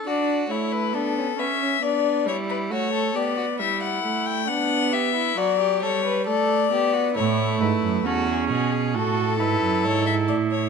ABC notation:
X:1
M:4/4
L:1/16
Q:1/4=67
K:D
V:1 name="Violin"
d2 c B A2 e2 d2 c B c2 d2 | e f2 g f2 e2 d2 c2 d4 | c2 B2 A ^G F G A2 B2 c e d c |]
V:2 name="Violin"
F2 E2 D C B, C D2 E2 F A G F | E4 D2 G E F G A B A2 G F | E4 F2 ^G2 A8 |]
V:3 name="Viola"
D2 A,2 B,2 C2 B,2 G,2 A,2 B,2 | G,2 A,2 B,4 F,2 G,2 A,2 B,2 | A,4 C4 F2 E6 |]
V:4 name="Cello" clef=bass
z16 | z16 | A,,2 ^G,, F,, E,,2 B,,2 A,,2 G,, F,, G,,2 A,,2 |]